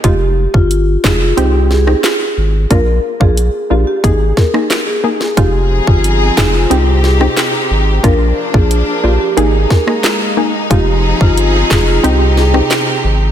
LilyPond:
<<
  \new Staff \with { instrumentName = "Marimba" } { \time 4/4 \key c \minor \tempo 4 = 90 g'16 r8 f'16 r8 aes'16 f'16 g'16 r16 aes'16 r4 r16 | bes'16 r8 aes'16 r8 g'16 g'16 aes'16 r16 bes'16 r8 aes'16 r16 aes'16 | g'16 r8 f'16 r8 aes'16 f'16 g'16 r16 aes'16 r4 r16 | bes'16 r8 aes'16 r8 g'16 g'16 aes'16 r16 bes'16 r4 r16 |
g'16 r8 f'16 r8 aes'16 f'16 r8 aes'16 r4 r16 | }
  \new Staff \with { instrumentName = "Synth stab" } { \time 4/4 \key c \minor <aes ees' f'>4. <aes ees' f'>8 <c' ees' g'>16 r8 <c' ees' g'>16 r4 | <bes d' f'>8. <bes d' f'>16 r8 <bes d' f'>16 r16 <bes ees' aes'>16 r8 <bes ees' aes'>16 r8 <bes ees' aes'>16 r16 | <aes ees' f'>4. <aes ees' f'>8 <c' ees' g'>16 r8 <c' ees' g'>16 r4 | <bes d' f'>8. <bes d' f'>16 r8 <bes d' f'>16 r16 <bes ees' aes'>16 r8 <bes ees' aes'>16 r8 <bes ees' aes'>16 r16 |
<aes ees' f'>4. <aes ees' f'>8 <c' ees' g'>16 r8 <c' ees' g'>16 r4 | }
  \new Staff \with { instrumentName = "String section" } { \time 4/4 \key c \minor << { r1 | r1 | <f ees' aes'>2 <c ees' g'>2 | <bes d'>2 <bes ees'>2 |
<f aes'>2 <c g'>2 | } \\ { r1 | r1 | c'1 | f2 aes2 |
c'2 c'2 | } >> }
  \new Staff \with { instrumentName = "Sub bass" } { \clef bass \time 4/4 \key c \minor f,,8. g,,8. f,,8 c,4 r8 aes,,8 | bes,,8 r16 bes,,8 r16 bes,,16 r16 aes,,8 r4. | f,,8. g,,8. f,,8 c,4 r8 aes,,8 | bes,,8 r16 bes,,8 r16 bes,,16 r16 aes,,8 r4. |
f,,8. g,,8. f,,8 c,4 r8 aes,,8 | }
  \new DrumStaff \with { instrumentName = "Drums" } \drummode { \time 4/4 <hh bd>8. bd16 hh8 <hc bd sn>8 hh8 sn16 ss16 <hc hh sn>4 | <hh bd>8. bd16 hh4 <hh bd>8 <bd sn>16 ss16 <hc hh sn>8. sn16 | <hh bd>8. bd16 hh8 <hc bd sn>8 hh8 sn16 ss16 <hc hh sn>4 | <hh bd>8. bd16 hh4 hh8 <bd sn>16 ss16 <hc hh sn>4 |
<hh bd>8. bd16 hh8 <hc bd sn>8 hh8 sn16 ss16 <hc hh sn>4 | }
>>